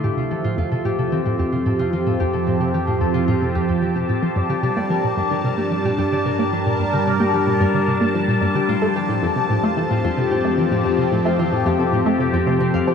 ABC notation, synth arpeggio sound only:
X:1
M:4/4
L:1/16
Q:1/4=111
K:F
V:1 name="Synth arpeggio sound" clef=bass
A,, C, E, A,, F,, C, A,, C, E, A,, F,, C, A,, C, E, A,, | F,, C, A,, C, E, A,, F,, C, A,, C, F,, F,, F, C, A,, F, | G,, D, C, B, F, B,, G,, D, C, B, F, B,, G,, D, C, B, | F, B,, G,, D, C, B, F, B,, G,, D, C, B, F, B,, G,, D, |
A,, A, E, A,, F,, C, A,, A, E, A,, F,, C, A,, A, E, A,, | F,, C, A,, A, E, A,, F,, C, A,, A, C, F,, C, C, F,, F, |]